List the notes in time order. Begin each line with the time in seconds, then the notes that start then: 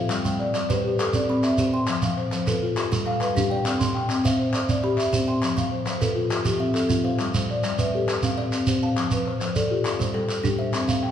Already playing: F4 C5 F5
0.10 G3, clap, shekere
0.24 G3 G5, shekere
0.39 D5, clap
0.54 G3 D5, clap, shekere
0.69 G4 B4 C5, clap, shekere
0.84 G4
0.99 A4, clap, shekere
1.13 C4 D5, shekere
1.29 C4 B5, clap
1.43 E5, clap, shekere
1.58 C4 G4 C5, shekere
1.73 G5 C6
1.87 F3, clap, shekere
2.02 F3 F5, shekere
2.17 C5, clap
2.32 F3 C5, clap, shekere
2.47 F4 A4 B4, clap, shekere
2.62 F4
2.77 G4, clap, shekere
2.91 G3 A4, shekere
3.06 G3 F5, clap
3.20 B4, clap, shekere
3.35 G3 D4 G4, shekere
3.50 D5 G5
3.64 C4, clap, shekere
3.79 C4 C6, shekere
3.95 G5, clap
4.09 C4 G5, clap, shekere
4.24 C5 E5 F5, clap, shekere
4.39 C5
4.54 D5, clap, shekere
4.68 C4 D5, shekere
4.83 G4 B5, clap
4.98 E5, clap, shekere
5.13 C4 G4 C5, shekere
5.28 G5 C6
5.43 F3, clap, shekere
5.57 F3 F5, shekere
5.71 C5
5.86 F3 C5, clap, shekere
6.00 F4 A4 B4, clap, shekere
6.15 F4
6.31 G4, clap, shekere
6.45 F3 G4, clap, shekere
6.59 C4 E5
6.74 A4, clap, shekere
6.89 F3 C4 F4, shekere
7.04 C5 F5
7.19 G3, clap, shekere
7.34 G3 C5, shekere
7.50 D5, clap
7.63 G3 D5, clap, shekere
7.79 B4 E5, clap, shekere
7.94 G4 A4
8.09 G4, clap, shekere
8.23 C4 F5, shekere
8.38 C4 D5, clap
8.52 clap, shekere
8.67 C4 G4 C5, shekere
8.83 F5 A5
8.97 F3, clap, shekere
9.11 F3 B4, shekere
9.26 C5, clap
9.40 F3 C5, clap, shekere
9.55 A4 D5, shekere
9.70 F4 G4
9.85 F4, clap, shekere
9.99 G3 C5, shekere
10.14 G3 A4, clap
10.29 clap, shekere
10.43 G3 D4 G4, shekere
10.58 C5 E5
10.73 C4, clap, shekere
10.88 C4 F5, shekere
11.03 G5, clap